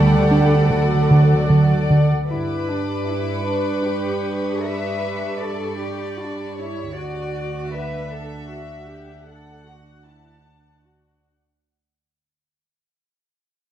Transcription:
0.00 2.09 D2 medium
0.00 0.15 D3 medium
0.00 0.71 G3 soft
0.00 0.71 G4 soft
0.00 2.09 A4 medium
0.00 2.05 D5 soft
0.00 2.06 D5 soft
0.00 2.10 F#5 soft
0.00 1.87 A5 soft
0.00 1.08 B5 soft
0.00 0.28 C#6 soft
0.31 0.55 D4 soft
0.70 0.94 D3 soft
0.70 1.90 F#3 soft
0.70 1.91 F#4 soft
1.11 1.35 D3 medium
1.50 1.74 D3 soft
1.90 2.14 D3 soft
2.29 6.92 G2 soft
2.29 6.92 D4 soft
2.29 2.66 E4 soft
2.29 6.93 G4 soft
2.29 4.61 B4 soft
2.29 6.55 B5 soft
2.29 4.34 D6 soft
2.69 3.07 D4 soft
3.07 3.45 E4 soft
3.07 6.55 C#6 soft
3.46 3.85 D4 soft
3.84 4.64 G4 soft
4.34 5.00 D#6 soft
4.64 5.42 B4 soft
4.64 5.42 E5 soft
5.42 5.81 A4 soft
5.42 6.58 D5 soft
5.81 6.19 G4 soft
6.20 6.58 D4 soft
6.58 6.96 E4 soft
6.58 6.96 C#5 soft
6.96 11.43 D2 soft
6.96 11.39 D4 soft
6.96 7.71 F#4 soft
6.96 7.73 D5 soft
6.96 11.39 F#5 soft
7.74 8.12 B4 soft
7.74 9.28 E5 medium
8.12 8.50 A4 soft
8.51 8.89 F#4 soft
8.90 9.28 G4 soft
9.27 9.65 A4 soft
9.27 10.04 F#5 medium
9.66 10.05 F#4 soft
10.05 10.44 E4 soft
10.05 10.83 A5 soft
10.45 10.84 D4 soft
10.84 11.24 F#4 soft

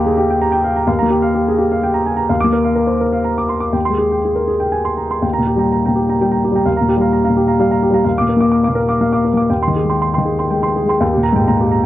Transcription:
0.00 0.84 D#2 medium
0.00 0.89 A#3 soft
0.00 0.17 G4 medium
0.00 0.30 G5 medium
0.00 0.42 A#5 medium
0.06 0.18 G#4 medium
0.17 0.36 G4 medium
0.30 0.48 G5 medium
0.42 0.60 A#5 medium
0.52 0.71 G5 medium
0.64 0.76 F5 soft
0.76 0.88 A#5 medium
0.87 2.25 D#2 medium
0.87 1.06 F5 medium
0.99 1.28 A#3 soft
0.99 1.18 A#5 medium
1.10 1.30 G4 medium
1.22 1.42 F5 medium
1.35 1.54 G4 soft
1.48 1.59 G#4 soft
1.58 1.77 G4 medium
1.72 1.90 F5 soft
1.83 2.01 G5 medium
1.94 2.13 A#5 medium
2.06 2.18 G#5 soft
2.17 2.29 A#5 medium
2.29 3.71 D#2 medium
2.29 2.48 F5 soft
2.40 2.70 A#3 soft
2.40 2.60 D6 medium
2.53 2.72 A#4 soft
2.64 2.83 F5 soft
2.75 2.95 A#4 soft
2.87 3.00 C5 soft
3.01 3.20 A#4 soft
3.12 3.32 F5 soft
3.24 3.44 A#5 soft
3.38 3.57 D6 soft
3.49 3.62 C6 soft
3.60 3.74 D6 soft
3.73 5.19 D#2 soft
3.73 3.94 G5 soft
3.85 4.06 C6 soft
3.89 4.17 G#3 soft
3.98 4.19 G#4 soft
4.12 4.32 G5 soft
4.25 4.45 G#4 soft
4.35 4.49 A#4 soft
4.48 4.68 G#4 soft
4.60 4.81 G5 soft
4.72 4.93 G#5 soft
4.85 5.06 C6 soft
4.97 5.11 A#5 soft
5.11 5.23 C6 soft
5.22 6.62 D#2 soft
5.22 5.32 G5 soft
5.33 5.46 G5 soft
5.33 5.46 A#5 medium
5.38 5.66 A#2 soft
5.47 5.67 G4 soft
5.56 5.82 G3 soft
5.56 5.70 G5 soft
5.56 5.71 A#5 soft
5.72 5.84 A#5 soft
5.85 6.14 A#2 soft
5.85 5.96 G5 soft
5.85 5.96 A#5 soft
5.96 6.15 G4 soft
6.09 6.19 G5 soft
6.09 6.20 A#5 soft
6.21 6.45 G3 soft
6.21 6.30 G5 soft
6.32 6.42 G5 soft
6.32 6.42 A#5 soft
6.45 6.63 G4 soft
6.52 6.67 G3 soft
6.52 6.66 G5 soft
6.56 6.66 A#5 soft
6.66 8.01 D#2 soft
6.66 6.75 F5 soft
6.76 6.88 F5 soft
6.76 6.88 A#5 medium
6.81 7.06 A#2 soft
6.89 7.08 G4 soft
6.97 7.22 G3 soft
7.01 7.12 F5 soft
7.01 7.11 A#5 soft
7.13 7.23 A#5 soft
7.24 7.35 F5 soft
7.24 7.35 A#5 soft
7.29 7.53 A#2 soft
7.37 7.55 G4 soft
7.47 7.58 F5 soft
7.47 7.58 A#5 soft
7.60 7.84 G3 medium
7.60 7.70 F5 medium
7.71 7.82 F5 medium
7.71 7.82 A#5 medium
7.83 8.01 G4 soft
7.91 8.06 G3 soft
7.91 8.03 F5 soft
7.91 8.04 A#5 medium
8.04 9.46 D#2 soft
8.04 8.16 F5 medium
8.17 8.46 A#2 soft
8.17 8.28 F5 soft
8.17 8.28 D6 medium
8.29 8.47 A#4 soft
8.37 8.62 A#3 soft
8.37 8.51 F5 soft
8.37 8.50 D6 medium
8.52 8.63 D6 medium
8.63 8.74 F5 soft
8.63 8.75 D6 soft
8.68 8.94 A#2 soft
8.75 8.95 A#4 medium
8.88 8.99 F5 soft
8.88 8.99 D6 soft
9.01 9.27 A#3 soft
9.01 9.11 F5 soft
9.12 9.24 F5 soft
9.12 9.24 D6 soft
9.25 9.45 A#4 soft
9.34 9.50 A#3 soft
9.34 9.49 F5 soft
9.34 9.49 D6 soft
9.50 10.97 D#2 soft
9.50 9.60 G5 soft
9.62 9.74 G5 soft
9.62 9.74 C6 soft
9.67 9.95 D#3 soft
9.76 9.96 G#4 soft
9.85 10.12 G#3 soft
9.90 10.01 G5 soft
9.90 10.00 C6 soft
10.02 10.13 C6 soft
10.13 10.25 G5 soft
10.13 10.25 C6 soft
10.18 10.45 D#3 soft
10.25 10.46 G#4 soft
10.39 10.49 G5 soft
10.39 10.50 C6 soft
10.50 10.78 G#3 soft
10.50 10.61 G5 soft
10.62 10.74 G5 soft
10.62 10.75 C6 soft
10.76 10.96 G#4 soft
10.85 11.01 G#3 soft
10.85 10.99 G5 soft
10.89 11.00 C6 soft
11.00 11.86 D#2 medium
11.00 11.20 G5 soft
11.13 11.32 G4 soft
11.17 11.42 A#2 soft
11.23 11.43 A#5 medium
11.33 11.48 G#2 soft
11.33 11.55 G5 medium
11.48 11.73 A#2 soft
11.48 11.67 A#5 medium
11.61 11.79 G4 soft
11.72 11.86 A#5 medium

